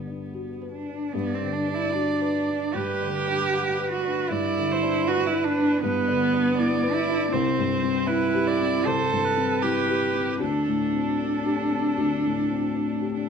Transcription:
0.00 1.10 G2 soft
0.00 1.16 D3 soft
0.00 0.69 B3 soft
0.00 0.07 D4 soft
0.00 0.29 G4 soft
0.00 0.62 B4 soft
0.00 1.15 F#5 soft
0.07 0.50 D4 soft
0.34 0.76 F#4 soft
0.62 1.04 B4 soft
0.72 1.15 D4 medium
0.89 1.14 D4 soft
1.13 2.72 G2 medium
1.13 1.36 B3 medium
1.13 2.77 D5 medium
1.34 1.54 C4 medium
1.41 1.83 D3 soft
1.52 1.76 D4 medium
1.68 2.10 D4 soft
1.74 1.94 E4 medium
1.93 2.75 D4 medium
1.93 2.37 F#4 soft
2.21 2.65 B4 soft
2.48 2.91 D4 soft
2.73 4.27 G2 soft
2.73 3.90 G4 medium
2.73 3.14 B4 medium
3.02 3.43 D3 soft
3.14 4.33 B4 soft
3.27 3.69 D4 soft
3.54 3.95 F#5 soft
3.79 4.20 B4 soft
3.91 4.31 F#4 medium
4.04 4.30 D4 soft
4.29 5.79 G2 medium
4.29 5.09 E4 loud
4.29 4.73 D5 medium
4.57 4.98 D3 soft
4.71 5.10 C5 medium
4.83 5.23 D4 medium
5.07 5.48 E4 soft
5.07 5.28 F#4 loud
5.07 5.83 B4 medium
5.27 5.46 E4 medium
5.33 5.73 B4 medium
5.44 5.83 D4 medium
5.58 5.98 D4 medium
5.81 7.29 G2 medium
5.81 6.95 B3 loud
5.81 6.57 B4 medium
6.08 6.48 D3 medium
6.33 6.73 D4 medium
6.58 6.98 E4 medium
6.58 7.34 D5 medium
6.83 7.22 B4 medium
6.94 7.31 E4 loud
7.08 7.33 D4 medium
7.32 8.82 C2 medium
7.32 8.08 C4 medium
7.32 8.09 C5 medium
7.58 7.98 G2 medium
7.83 8.23 C4 medium
8.06 8.87 E4 medium
8.06 8.50 E4 soft
8.06 8.48 B4 medium
8.34 8.76 G4 medium
8.47 8.88 D5 medium
8.61 9.02 C4 soft
8.86 10.36 C2 medium
8.86 9.64 A4 loud
8.86 9.26 C5 medium
9.11 9.52 G2 soft
9.25 10.43 B4 medium
9.37 9.77 C4 medium
9.62 10.03 E4 soft
9.62 10.39 G4 medium
9.88 10.29 G4 medium
10.14 10.40 C4 soft
10.40 11.94 D2 soft
10.40 13.11 D4 medium
10.40 13.29 A4 soft
10.66 11.08 A2 soft
10.92 11.34 C4 soft
11.19 11.61 D4 soft
11.45 11.87 G4 soft
11.71 12.13 C4 soft
11.97 13.29 D2 soft
12.24 12.65 A2 soft
12.50 12.92 C4 soft
12.75 13.17 D4 soft
13.01 13.29 G4 soft
13.14 13.29 D4 medium

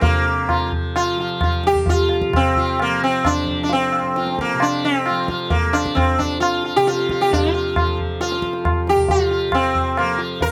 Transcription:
0.00 1.71 F2 medium
0.00 0.06 C3 medium
0.00 0.61 F3 medium
0.00 0.68 A#3 medium
0.00 0.25 F4 soft
0.00 tabla tin loud
0.00 tabla ge medium
0.06 2.29 C3 medium
0.49 0.71 F4 soft
0.49 tabla na medium
0.49 tabla ge medium
0.61 1.17 F3 medium
0.72 tabla ge medium
0.96 1.19 F4 medium
0.96 tabla na medium
1.17 2.86 F3 medium
1.17 1.41 F4 soft
1.41 1.64 F4 soft
1.41 tabla na medium
1.41 tabla ge medium
1.64 1.90 G4 medium
1.64 tabla te medium
1.72 4.01 F2 medium
1.72 tabla ge medium
1.86 2.31 F4 medium
1.86 tabla tin medium
1.86 tabla ge medium
2.09 tabla na medium
2.22 tabla ke medium
2.29 4.54 C3 medium
2.33 2.82 C4 medium
2.33 tabla na medium
2.33 tabla ge medium
2.56 2.78 F4 soft
2.56 tabla ge medium
2.80 3.03 A#3 medium
2.80 tabla na medium
2.86 3.44 F3 medium
3.04 3.26 C4 medium
3.25 3.62 D4 medium
3.25 tabla na medium
3.25 tabla ge medium
3.44 5.10 F3 medium
3.44 tabla ge medium
3.63 3.70 D4 medium
3.69 4.40 C4 medium
3.69 tabla tin medium
3.92 tabla na medium
4.02 6.21 F2 medium
4.16 4.38 F4 soft
4.16 tabla te medium
4.27 tabla te medium
4.39 4.63 A#3 medium
4.39 tabla ke medium
4.49 tabla te medium
4.54 6.76 C3 medium
4.60 4.85 D4 medium
4.60 tabla na medium
4.85 5.26 C4 medium
5.06 5.27 F4 soft
5.06 tabla na medium
5.10 5.67 F3 medium
5.28 5.50 F4 soft
5.28 tabla ke medium
5.50 5.74 A#3 medium
5.50 tabla tin medium
5.50 tabla ge medium
5.67 7.30 F3 medium
5.73 5.97 D4 medium
5.73 tabla na medium
5.86 tabla ke medium
5.95 6.19 C4 medium
5.95 tabla na medium
5.95 tabla ge medium
6.19 8.41 F2 medium
6.19 6.40 D4 medium
6.19 tabla ge medium
6.40 6.64 F4 medium
6.40 tabla na medium
6.65 6.85 F4 soft
6.76 8.95 C3 medium
6.76 6.87 G4 medium
6.87 7.09 F4 medium
6.87 tabla te medium
6.99 tabla te medium
7.09 7.31 F4 soft
7.09 tabla ke medium
7.21 7.31 G4 medium
7.21 tabla te medium
7.30 7.86 F3 medium
7.30 7.53 D4 medium
7.30 tabla tin loud
7.30 tabla ge medium
7.54 7.74 F4 soft
7.76 7.97 F4 soft
7.76 tabla na medium
7.76 tabla ge medium
7.86 9.48 F3 medium
7.99 tabla ge medium
8.21 8.89 F4 medium
8.21 tabla te medium
8.32 tabla te medium
8.42 10.52 F2 medium
8.42 tabla ke medium
8.53 tabla te medium
8.65 tabla na medium
8.65 tabla ge medium
8.87 9.11 G4 medium
8.87 tabla te medium
8.95 10.52 C3 medium
8.95 tabla ge soft
9.08 9.29 F4 medium
9.08 tabla tin medium
9.08 tabla ge medium
9.31 9.52 F4 soft
9.48 10.03 F3 medium
9.52 9.98 C4 medium
9.52 tabla na medium
9.52 tabla ge medium
9.75 tabla ge medium
9.97 10.19 A#3 medium
9.97 tabla na medium
10.03 10.52 F3 medium
10.18 10.39 F4 soft
10.41 10.52 A#4 medium
10.41 tabla tin medium
10.41 tabla ge medium

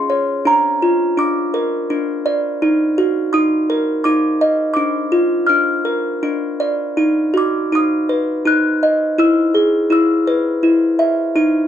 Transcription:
0.00 0.46 C#4 medium
0.00 0.45 G#4 medium
0.00 0.41 C6 medium
0.10 0.45 C#5 medium
0.45 1.16 D4 medium
0.45 1.21 A#5 medium
0.82 2.25 F4 medium
1.17 1.89 D4 medium
1.17 2.21 D6 medium
1.54 2.61 A#4 medium
1.90 2.61 D4 medium
2.26 2.61 D5 medium
2.62 3.33 D#4 medium
2.98 4.41 F#4 medium
3.33 4.04 D#4 medium
3.33 4.06 D#6 medium
3.70 4.77 A#4 medium
4.04 4.76 D#4 medium
4.04 4.72 D6 medium
4.41 4.77 D#5 medium
4.74 5.48 D4 medium
4.74 5.49 D6 medium
5.12 6.59 F4 medium
5.46 6.22 D4 medium
5.46 6.54 F6 medium
5.85 6.97 A#4 medium
6.23 6.97 D4 medium
6.60 6.97 D5 medium
6.97 7.71 D#4 medium
7.34 8.81 F#4 medium
7.34 7.74 D6 medium
7.72 8.44 D#4 medium
7.72 8.43 D#6 medium
8.09 9.19 B4 medium
8.45 9.18 D#4 medium
8.45 9.15 F#6 medium
8.83 9.19 D#5 medium
9.18 9.89 E4 medium
9.18 9.91 E6 medium
9.54 10.98 G#4 medium
9.90 10.62 E4 medium
9.90 10.95 E6 medium
10.27 11.34 B4 medium
10.63 11.34 E4 medium
10.99 11.35 E5 medium
11.36 11.68 D#4 medium

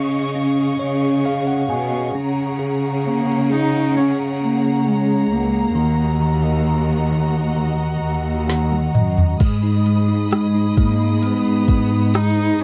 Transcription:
0.00 0.77 C#3 medium
0.00 0.35 C#4 medium
0.00 1.25 G#4 soft
0.00 5.71 G#4 medium
0.00 2.12 D#5 medium
0.00 2.11 F5 medium
0.00 2.12 C#6 medium
0.35 2.11 C#4 soft
0.79 1.66 C#3 medium
0.79 1.22 C#5 medium
1.25 2.12 G#4 soft
1.25 1.46 F5 medium
1.47 1.68 F#5 medium
1.70 2.12 B2 medium
1.70 2.12 G#5 medium
2.15 5.26 C#3 medium
2.15 3.04 C#4 medium
2.15 5.72 C#5 medium
2.15 5.72 F#5 medium
2.15 9.37 A#5 medium
2.59 3.48 G#4 soft
3.05 3.53 A#3 medium
3.05 3.94 C#4 soft
3.50 3.96 D#4 medium
3.50 4.83 G#4 soft
3.95 5.71 C#4 soft
3.95 4.16 C#4 medium
4.42 4.88 A#3 medium
4.85 5.33 G#3 medium
4.85 5.72 G#4 soft
5.30 5.72 C#2 medium
5.30 6.67 A#3 medium
5.75 7.99 D#2 medium
5.75 6.19 D#3 medium
5.75 9.37 F#4 medium
5.75 9.37 D#5 medium
5.75 9.37 F#5 medium
6.20 6.65 D#3 soft
6.66 7.10 D#3 soft
7.12 7.55 D#3 soft
7.56 8.47 D#3 soft
8.03 8.91 D#2 medium
8.48 9.38 D#3 soft
8.48 8.91 F#5 soft
8.48 snare soft
8.72 high tom soft
8.94 9.38 F#2 medium
8.94 9.37 D#5 soft
8.94 mid tom medium
9.18 floor tom medium
9.40 10.73 G#2 medium
9.40 9.85 G#3 medium
9.40 12.64 G#4 medium
9.40 12.64 D#5 medium
9.40 12.64 B5 medium
9.40 12.64 D#6 medium
9.40 kick medium
9.40 closed hi-hat medium
9.40 crash medium
9.63 10.07 D#4 soft
9.86 10.30 G#3 soft
9.86 closed hi-hat medium
10.08 10.53 D#4 soft
10.31 10.76 G#3 soft
10.31 10.75 G#3 medium
10.31 cross-stick medium
10.31 closed hi-hat medium
10.55 10.99 D#4 soft
10.77 11.64 G#2 medium
10.77 11.21 G#3 soft
10.77 11.25 A#3 medium
10.77 kick medium
10.77 closed hi-hat soft
11.00 11.45 D#4 soft
11.22 11.67 G#3 medium
11.22 12.16 B3 medium
11.22 closed hi-hat medium
11.46 11.90 D#4 soft
11.68 12.64 G#2 medium
11.68 12.13 G#3 soft
11.68 kick medium
11.68 closed hi-hat soft
11.91 12.36 D#4 soft
12.14 12.58 G#3 soft
12.14 12.62 D#4 medium
12.14 cross-stick medium
12.14 closed hi-hat medium
12.37 12.64 D#4 soft
12.59 12.64 G#3 soft
12.59 12.64 C#4 medium
12.59 closed hi-hat medium

